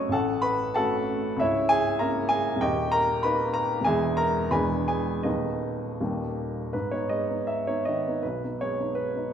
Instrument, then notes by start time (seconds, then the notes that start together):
upright piano
Already playing: F#1 F#2 A3 C#4 F#4 A4 C#5 D#5 F#5 A5 C#6 D#6
0.09 A1 A4 A5
0.13 A2 F#5
0.42 B4 B5
0.74 A3 C#4 F#4 A4 F#5 A5
1.36 C#2 E5
1.41 C#1 E4 C#5
1.69 G#4 G#5
1.99 A#3 C#4 E4 A#4 E5 A#5
2.29 G#4 G#5
2.56 D#1
2.61 D#2 G4 D#5 G5
2.92 A#4 A#5
3.23 A#3 D#4 B4 B5
3.54 A#4 A#5
3.81 E1 G#5
3.86 E2 G#3 B3 G#4 E5
4.17 A#4 A#5
4.51 E1 E2 G#3 B3 D4 B4 G#5 B5
4.88 G#4 G#5
5.23 D#1 D#2 G#3 B3 D#4 B4 D#5
6.00 D#1 D#2 G3 A#3 D#4
6.73 G#2 B4
6.91 B3 D#4 C#5
7.09 G#3 D#5
7.30 B3 D#4
7.47 E5
7.67 B3 D#4 C#5
7.85 D#3 D#5
8.08 B3 D#4
8.23 B1 B4
8.44 B3 D#4
8.61 G#3 C#5
8.79 B3 D#4
8.95 B4
9.16 B3 D#4